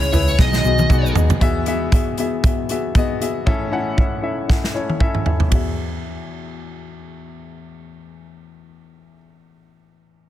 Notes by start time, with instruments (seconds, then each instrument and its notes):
Already playing: grand piano C#3 E4 G#4 C#5, steel-string acoustic guitar G#3 C#4 E4 G#4, lead electric guitar C#5
0.03 shaker
0.12 picked electric bass C#2, steel-string acoustic guitar C#4 E4 G#4, grand piano E4 G#4 B4, floor tom, hi-hat pedal, open hi-hat, shaker
0.28 shaker
0.38 picked electric bass B1, steel-string acoustic guitar B2 D#3 F#3 B3 D#4 G#4, grand piano B2 B3 D#4 F#4 G#4 D#5, lead electric guitar D#5, kick, snare, shaker
0.53 snare, shaker
0.64 picked electric bass B1, grand piano B3 D#4 F#4 G#4 D#5, shaker
0.78 high tom, shaker
0.89 picked electric bass B1, steel-string acoustic guitar F#3 B3 D#4 G#4, grand piano B3 D#4 F#4 G#4 D#5, kick, mid tom, shaker
1.06 shaker
1.15 picked electric bass D#2, steel-string acoustic guitar F#3 B3 D#4 G#4, grand piano B3 D#4 F#4 G#4 D#5, floor tom, shaker
1.30 floor tom, shaker
1.41 grand piano E2 E3 B3 F#4 G#4 E5, kick, closed hi-hat
1.66 grand piano B3 F#4 G#4 E5, closed hi-hat
1.92 grand piano B3 F#4 G#4 E5, kick, closed hi-hat
2.18 grand piano B3 F#4 G#4 E5, closed hi-hat
2.44 grand piano B3 F#4 G#4 E5, kick, closed hi-hat
2.69 grand piano B3 F#4 G#4 E5, closed hi-hat
2.95 grand piano B3 F#4 G#4 D#5, kick, closed hi-hat
3.20 grand piano B3 F#4 G#4 E5, closed hi-hat
3.46 grand piano A1 A2 C#4 E4 A4 E5, kick
3.72 grand piano C#4 E4 A4 F#5
3.97 grand piano C#4 E4 A4 E5, kick
4.22 grand piano C#4 E4 A4 E5
4.48 grand piano C#4 E4 A4 F#5, kick, snare
4.64 snare
4.74 grand piano C#4 E4 A4 C#5
4.89 high tom
4.99 grand piano C#4 E4 A4 E5, kick
5.15 mid tom
5.25 grand piano C#4 E4 A4 E5, floor tom
5.40 floor tom
5.48 grand piano E2 B3 F#4, kick, ride
5.52 grand piano G#4 E5